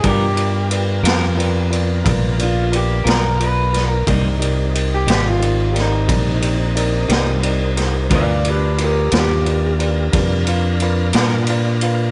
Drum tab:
RD |xxxxxxxxxxxx|xxxxxxxxxxxx|xxxxxxxxxxxx|
SD |---o-----o-o|---o-o---o-o|---o-----o--|
BD |o-----o-----|o-----o-----|o-----o-----|